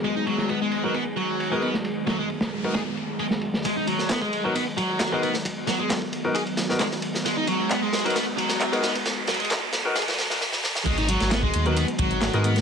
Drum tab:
CC |--------------------------------|--------------------------------|--------------------------------|--------------------------------|
RD |x---x---x---x---x---x---x---x---|x---x---x-x---x-x---x---x---x---|x---x---x---x---x---x---x---x---|x---x---x---x---x-x-x---x---x---|
HH |--------------------------------|--------------------------------|--------------------------------|--------------------------------|
CP |--------------------------------|--------------------------------|--------x---------------x-------|--------x---------------x-------|
SD |------o-----------------------o-|----o-----o-----o---------o---o-|------o-o---------------o-----o-|----o---o-----------o-o-o-o---o-|
BD |--------------------------------|--------------------------------|o---------o---------o-----------|o---------o-----o---------------|

CC |--------------------------------|--------------------------------|x-------------------------------|
RD |x---x---x---xxxxx---x-x-x-x-x-x-|x---xxxxx---x---xxxxx-----------|x---x---x---x---x---x---x---x---|
HH |--------------------------------|--------------------------------|x-x-x-x-x---x-x-x-x-x-x-x-x-x-x-|
CP |--------x---------------x-------|--------x-----------------------|--------x---------------x-------|
SD |o-----------o---o-----o-----o---|o---o---o---o---o-o-o-o-o-o-o-o-|------o-o---------------o-----o-|
BD |--------------------------------|--------------------------------|o---------o---------o-----------|